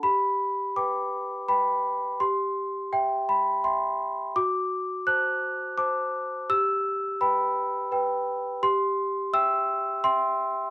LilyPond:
\new Staff \with { instrumentName = "Celesta" } { \time 3/4 \key g \major \tempo 4 = 84 << { b''4 d'''4 b''4 | c'''4 g''8 b''8 c'''4 | d'''4 fis'''4 d'''4 | e'''4 b''8 r4. |
c'''4 e'''4 c'''4 | } \\ { g'4 <b' g''>4 <b' g''>4 | g'4 e''4 <e'' g''>4 | fis'4 <c'' a''>4 <c'' a''>4 | g'4 <b' g''>4 <b' g''>4 |
g'4 <e'' g''>4 <e'' g''>4 | } >> }